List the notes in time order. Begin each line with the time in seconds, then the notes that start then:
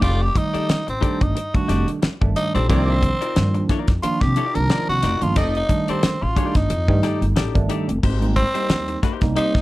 0.01 F1 A3 D#4 F4 G4 A4 D5, kick, closed hi-hat
0.22 G4
0.35 D#3 G3 A3 D#4, muted clean electric guitar stroke, kick, closed hi-hat
0.54 D#4 G4 A4 D5, muted upright bass stroke, closed hi-hat
0.69 muted upright bass stroke, snare, closed hi-hat
0.87 A1 C4, muted clean electric guitar stroke, closed hi-hat
1.01 D#3 G3 A3 D4 D#4 G4 A4 D5, kick, closed hi-hat
1.21 G1 D#4, muted clean electric guitar stroke, kick, closed hi-hat
1.35 muted clean electric guitar stroke, closed hi-hat
1.54 D#3 G3 A3 D4 F#4, muted clean electric guitar stroke, muted upright bass stroke, kick, closed hi-hat
1.68 F1 D#4 G4 A4 D5, snare, closed hi-hat
1.87 muted clean electric guitar stroke, closed hi-hat
2.02 muted clean electric guitar stroke, muted upright bass stroke, snare, closed hi-hat
2.21 G1 D#3 G3 A3 D4, muted clean electric guitar stroke, kick
2.36 D#4, closed hi-hat
2.55 A#1 C4 D#4 G4 A4 D5, closed hi-hat
2.69 C2 D#3 F3 A#3 C4 D4 D#4 F4 G4 A#4 D5, kick, closed hi-hat
3.03 muted clean electric guitar stroke, kick, closed hi-hat
3.21 D#4 F4 A#4 D5, closed hi-hat
3.36 G2 D#3 F3 A#3 D4, snare, closed hi-hat
3.54 muted clean electric guitar stroke, closed hi-hat
3.69 D#4 F4 A#4 D5, kick, snare, closed hi-hat
3.88 F2, muted clean electric guitar stroke, kick, snare, closed hi-hat
4.03 D#3 F3 A#3 D4 F4, muted clean electric guitar stroke, muted upright bass stroke, closed hi-hat
4.21 C3 G4, muted clean electric guitar stroke, kick, snare
4.36 D#4 F4 A#4 D5, closed hi-hat
4.55 C2 D#3 F3 A#3 D4 A#4, muted clean electric guitar stroke, closed hi-hat
4.70 D#4 F4 A#4 D5, snare, closed hi-hat
4.89 C2 F#4, muted clean electric guitar stroke
5.03 F1 D#4 F4 A#4 D5, snare, closed hi-hat
5.22 G1 D#3 F3 A#3 D4 F4, muted clean electric guitar stroke, closed hi-hat
5.36 F1 C4 D#4 G4 A4 D5 D#5, kick, closed hi-hat
5.55 D#4, closed hi-hat
5.69 D#3 G3 A3 D4, muted clean electric guitar stroke, kick, closed hi-hat
5.88 C4 D#4 G4 A4 D5, muted upright bass stroke, closed hi-hat
6.03 muted upright bass stroke, snare, closed hi-hat
6.22 A1 F4, muted clean electric guitar stroke
6.36 D#3 G3 A3 D4 D#4 G4 A4 D5, kick, closed hi-hat
6.55 G1 D#4, muted clean electric guitar stroke, kick, snare, closed hi-hat
6.70 F2, muted clean electric guitar stroke, closed hi-hat
6.88 G2 D#3 G3 A3 D#4, muted clean electric guitar stroke, kick
7.03 D#4 G4 A4 D5, snare, closed hi-hat
7.21 G1, muted clean electric guitar stroke, closed hi-hat
7.36 A1 D#4 G4 A4 D5, snare, closed hi-hat
7.55 G1 D#3 G3 A3 D4, muted clean electric guitar stroke, kick, closed hi-hat
7.69 D#4 G4 A4 D5, closed hi-hat
7.89 F1, muted clean electric guitar stroke, closed hi-hat
8.03 G#1 A#3 D#4 G4 C5, kick, crash
8.21 G3 A#3 C4 D#4, closed hi-hat
8.36 C4, muted clean electric guitar stroke, kick, closed hi-hat
8.54 G3 A#3 C4 D#4 G4 C5, closed hi-hat
8.69 D#2, muted clean electric guitar stroke, snare, closed hi-hat
8.88 muted clean electric guitar stroke, closed hi-hat
9.03 A#3 D#4 G4 C5, kick, snare, closed hi-hat
9.21 C2 G3 A#3 C4 D#4, muted clean electric guitar stroke, kick, snare, closed hi-hat
9.36 A#3 D#4 G4 C5, muted upright bass stroke, closed hi-hat
9.55 G#2, muted clean electric guitar stroke, kick, snare